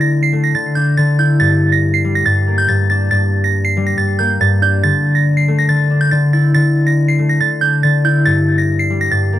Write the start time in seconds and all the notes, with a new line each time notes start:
Already playing: D3 A3 D4 E4
0.01 A#6
0.23 C7
0.33 A3
0.44 A#6
0.55 D3 A6
0.75 D4 G6
0.97 D3 A6
1.18 E4 G6
1.40 G2 A6
1.72 A#6
1.94 C7
2.05 G3
2.15 A#6
2.26 G2 A6
2.47 A#3
2.58 G6
2.69 G2 A6
2.90 D4 A6
3.11 G2 A6
3.44 A#6
3.65 C7
3.77 G3
3.87 A#6
3.97 G2 A6
4.19 A#3 G6
4.41 G2 A6
4.62 D4 G6
4.83 D3 A6
5.15 A#6
5.37 C7
5.48 A3
5.58 A#6
5.69 D3 A6
5.90 D4
6.01 G6
6.11 D3 A6
6.33 E4 A6
6.54 D3 A6
6.87 A#6
7.08 C7
7.19 A3
7.29 A#6
7.40 D3 A6
7.61 D4 G6
7.83 D3 A6
8.04 E4 G6
8.26 G2 A6
8.58 A#6
8.79 C7
8.90 G3
9.01 A#6
9.11 G2 A6
9.33 A#3